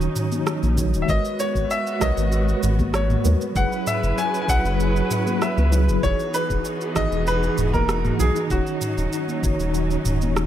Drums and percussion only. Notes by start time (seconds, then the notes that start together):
0.01 shaker
0.16 mid tom, shaker
0.32 high conga, shaker
0.47 cross-stick, shaker
0.63 high conga, shaker
0.78 kick, low conga, shaker
0.94 shaker
1.08 kick, shaker
1.25 shaker
1.40 shaker
1.55 kick, shaker
1.71 shaker
1.87 shaker
2.01 kick, cross-stick, shaker
2.17 shaker
2.32 shaker
2.48 shaker
2.63 mid tom, shaker
2.79 kick, high conga, shaker
2.94 cross-stick, shaker
3.10 mid tom, high conga, shaker
3.25 low conga, shaker
3.41 shaker
3.56 kick, shaker
3.72 shaker
3.87 mid tom, shaker
4.03 shaker
4.18 shaker
4.34 shaker
4.49 kick, shaker
4.65 shaker
4.80 shaker
4.96 shaker
5.11 mid tom, shaker
5.27 high conga, shaker
5.42 cross-stick, shaker
5.57 high conga, shaker
5.72 low conga, shaker
5.89 shaker
6.03 kick, shaker
6.19 shaker
6.34 shaker
6.50 kick, shaker
6.65 shaker
6.81 shaker
6.96 kick, cross-stick, shaker
7.12 shaker
7.27 shaker
7.43 shaker
7.58 mid tom, shaker
7.74 kick, high conga, shaker
7.89 cross-stick, shaker
8.05 mid tom, high conga, shaker
8.20 low conga, shaker
8.36 shaker
8.50 kick, shaker
8.67 shaker
8.81 mid tom, shaker
8.98 shaker
9.13 shaker
9.28 high conga, shaker
9.43 kick, shaker
9.60 shaker
9.74 shaker
9.91 shaker
10.05 mid tom, shaker
10.21 high conga, shaker
10.37 cross-stick, shaker